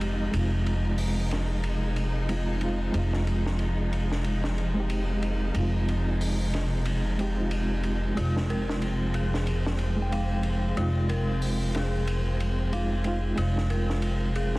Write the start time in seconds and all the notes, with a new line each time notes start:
Already playing: F1 C3 F3 G#3 C4 D#4 G4, downlifter
0.01 ride
0.32 F1 G#3 C4 D#4, ride
0.38 F4
0.66 ride
0.98 open hi-hat
1.31 snare, ride
1.64 ride
1.96 ride
2.29 G#3 C4 D#4 F4, ride
2.61 G#3 C4 D#4 F4, ride
2.92 F1 G#3 C4 D#4, ride
2.98 F4
3.13 snare
3.27 ride
3.46 snare
3.59 ride
3.93 ride
4.12 snare
4.24 ride
4.44 snare
4.58 ride
4.74 G#3 C4
4.78 D#4 G4
4.90 ride
5.23 ride
5.53 F1 G#3 C4 D#4, ride
5.59 F4
5.89 ride
6.21 open hi-hat
6.53 snare, ride
6.85 ride
7.18 G#3 C4 D#4 G4, ride
7.35 G#3 C4 D#4
7.41 F4
7.51 ride
7.83 ride
8.15 F1 G#3 C4 D#4 F4, ride
8.21 F4
8.37 snare
8.50 A#4, ride
8.69 snare
8.82 ride
9.14 G#4, ride
9.34 snare
9.47 ride
9.66 snare
9.79 ride
9.96 G#3 C4
10.00 D#4 G5
10.12 F5, ride
10.43 ride
10.76 F1 G#3 C4 D#4 F4, ride
10.82 F4
11.09 A#4, ride
11.42 open hi-hat
11.74 G#4, snare, ride
12.07 ride
12.40 ride
12.72 G#3 C4 D#4 F4 F5, ride
13.04 G#3 C4 D#4 F4, ride
13.36 F1 G#3 C4 F4, ride
13.40 D#4 F4
13.58 snare
13.70 A#4, ride
13.90 snare
14.02 ride
14.35 G#4, ride
14.56 snare